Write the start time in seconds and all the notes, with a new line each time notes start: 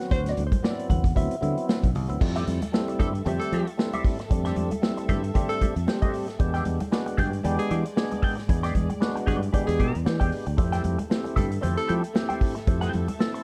Already playing: F#3 B3 C4 F#4
0.00 snare, closed hi-hat
0.11 D2 C5, kick, closed hi-hat, muted conga
0.26 D5, snare, closed hi-hat, muted conga
0.37 D2, closed hi-hat, high conga
0.47 C5
0.52 kick, closed hi-hat, high conga
0.62 F#3 B3 C4 D4 D5, snare
0.71 E4
0.79 closed hi-hat
0.90 E2 F#5, kick, closed hi-hat, high conga, low conga
1.04 kick, closed hi-hat
1.15 D2 F#3 B3 C4 E4 E5, kick, closed hi-hat, muted conga, low conga
1.31 closed hi-hat
1.41 D3 F#3 B3 C4 E4, closed hi-hat, high conga
1.57 closed hi-hat
1.69 snare, muted conga
1.83 B1, kick, closed hi-hat
1.95 C2, open hi-hat, low conga
2.08 D2 F#3 B3 C4 E4, closed hi-hat
2.20 F2 G3 A3 C4 E4 A4 E5, muted clean electric guitar stroke, kick, crash
2.35 C4 G4 A4 E5, snare, closed hi-hat, muted conga
2.47 F2, muted clean electric guitar stroke, closed hi-hat, high conga
2.62 muted clean electric guitar stroke, closed hi-hat, high conga
2.72 G3 A3 C4 E4, snare, muted conga
2.88 muted clean electric guitar stroke, closed hi-hat, muted conga
2.99 G2 C4 G4 A4 E5, kick, closed hi-hat, high conga, low conga
3.15 muted clean electric guitar stroke, closed hi-hat
3.25 F2 G3 A3 C4 G4 A4 E5, closed hi-hat, muted conga, low conga
3.40 A4, muted clean electric guitar stroke, closed hi-hat
3.52 F3 C4 G4 A4 E5, closed hi-hat, high conga
3.67 muted clean electric guitar stroke, closed hi-hat
3.77 G3 A3 C4 E4, muted clean electric guitar stroke, snare
3.93 C4 G4 A4 E5, closed hi-hat, muted conga, high conga
4.04 kick, open hi-hat
4.19 muted clean electric guitar stroke, snare, closed hi-hat
4.29 F2 G3 A3 C4 D4 E5, muted clean electric guitar stroke, kick, closed hi-hat
4.45 C4 G4 A4 E5, snare, closed hi-hat, muted conga
4.56 F2, muted clean electric guitar stroke, closed hi-hat, high conga
4.71 muted clean electric guitar stroke, closed hi-hat, high conga
4.82 G3 A3 C4 E4, snare, muted conga
4.97 muted clean electric guitar stroke, closed hi-hat, muted conga
5.09 G2 C4 G4 A4 E5, kick, closed hi-hat, high conga, low conga
5.24 muted clean electric guitar stroke, closed hi-hat
5.34 G3 A3 C4 D4 G4 A4 E5, kick, closed hi-hat, muted conga, low conga
5.49 A4, muted clean electric guitar stroke, closed hi-hat
5.61 C4 G4 A4 E5, muted fingered electric bass stroke, kick, closed hi-hat, high conga
5.76 F2, muted clean electric guitar stroke, closed hi-hat
5.87 G3 A3 C4 G4, muted clean electric guitar stroke, snare, muted conga
6.02 C4 G4 A4 E5, kick, closed hi-hat, muted conga, high conga
6.14 open hi-hat
6.28 muted clean electric guitar stroke, snare, closed hi-hat
6.39 E2 G#3 B3 D4 G4 D5, muted clean electric guitar stroke, kick, closed hi-hat, muted conga
6.54 E4 G#4 D5 G5, snare, closed hi-hat
6.65 E2, closed hi-hat, high conga
6.80 muted clean electric guitar stroke, closed hi-hat, high conga
6.91 G#3 B3 D4 F#4, snare, muted conga
7.06 muted clean electric guitar stroke, closed hi-hat, muted conga
7.17 G2 E4 G#4 D5 G5, kick, closed hi-hat, high conga, low conga
7.32 muted clean electric guitar stroke, closed hi-hat
7.43 E2 G#3 B3 D4 E4 G4 G#4 D5 G5, closed hi-hat, low conga
7.58 G#4, muted clean electric guitar stroke, closed hi-hat, muted conga
7.70 E3 E4 G#4 D5 G5, closed hi-hat, high conga
7.85 muted clean electric guitar stroke, closed hi-hat
7.96 G#3 B3 D4 G#4, snare
8.11 muted clean electric guitar stroke, closed hi-hat, muted conga, high conga
8.22 E4 G#4 D5 G5, kick, open hi-hat
8.37 muted clean electric guitar stroke, snare, closed hi-hat
8.48 E2 G#3 B3 D4 G#4, muted clean electric guitar stroke, kick, closed hi-hat, muted conga
8.63 E4 G#4 D5 G5, snare, closed hi-hat
8.75 E2, kick, closed hi-hat, high conga
8.90 muted clean electric guitar stroke, closed hi-hat, high conga
9.00 G#3 B3 D4 F#4, snare, muted conga
9.15 muted clean electric guitar stroke, closed hi-hat, muted conga
9.26 G2 E4 G#4 D5 G5, kick, closed hi-hat, high conga, low conga
9.42 muted clean electric guitar stroke, closed hi-hat
9.53 G#3 B3 D4 E4 G4 G#4 D5 G5, kick, closed hi-hat, muted conga, low conga
9.67 E2 G#4, muted clean electric guitar stroke, closed hi-hat
9.79 B2 E4 G#4 D5 G5, kick, closed hi-hat, high conga
9.94 E2, muted clean electric guitar stroke, closed hi-hat
10.05 E3 G#3 B3 D4 G4, muted clean electric guitar stroke, snare, muted conga
10.20 E2 E4 G#4 D5 G5, kick, closed hi-hat, high conga
10.32 muted clean electric guitar stroke, open hi-hat
10.46 D2, muted clean electric guitar stroke, closed hi-hat
10.57 F2 A3 C4 E4 G4 A4 E5, muted clean electric guitar stroke, kick, closed hi-hat, muted conga
10.72 E4 A4 C5 G5, snare, closed hi-hat
10.84 F2, muted clean electric guitar stroke, closed hi-hat, high conga
10.98 muted clean electric guitar stroke, closed hi-hat, high conga
11.10 A3 C4 E4 G4, snare, muted conga
11.24 muted clean electric guitar stroke, closed hi-hat, muted conga
11.36 G2 E4 A4 C5 G5, kick, closed hi-hat, high conga, low conga
11.51 muted clean electric guitar stroke, closed hi-hat
11.61 F2 A3 C4 E4 G4 A4 C5 G5, closed hi-hat, low conga
11.76 A4, muted clean electric guitar stroke, closed hi-hat
11.87 F3 E4 A4 C5 G5, closed hi-hat, high conga
12.03 muted clean electric guitar stroke, closed hi-hat
12.14 A3 C4 E4 G4, muted clean electric guitar stroke, snare, muted conga
12.29 E4 A4 C5 G5, closed hi-hat, high conga
12.41 muted clean electric guitar stroke, kick, open hi-hat
12.55 muted clean electric guitar stroke, snare, closed hi-hat
12.67 F2 A3 C4 E4 G4 A5, muted clean electric guitar stroke, kick, closed hi-hat
12.81 E4 A4 C5 G5, snare, closed hi-hat, muted conga
12.93 F2, muted clean electric guitar stroke, closed hi-hat, high conga
13.08 muted clean electric guitar stroke, closed hi-hat, high conga
13.19 A3 C4 E4 A4, snare
13.34 muted clean electric guitar stroke, closed hi-hat